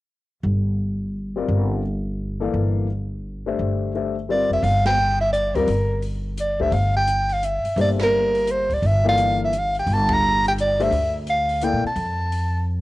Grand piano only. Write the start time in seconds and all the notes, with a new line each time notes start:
1.36 G3 C4 F4 A#4 D5
2.40 E3 A#3 A4 D5 F5
3.46 A3 D4 G4 C5 E5
3.94 A3 D4 G4 C5 E5
4.29 G3 C4 F4 A#4 D5
5.56 G3 C4 F4 A#4 D5
6.60 A3 D4 G4 C5 E5
7.77 A#3 D4 G4 C5 E5
9.04 E3 A#3 A4 D5 F5
10.79 A3 D4 G4 C5 E5
11.62 A#3 E4 A4 D5 F5